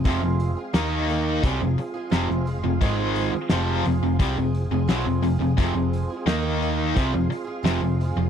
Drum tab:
HH |o-o-o-o-o-o-o-o-|o-o-o-o-o-o-o-o-|o-o-o-o-o-o-o-o-|
SD |----o-------oo--|----o-------o---|----o-------o---|
BD |o-------o-------|o-------o-------|o-------o-------|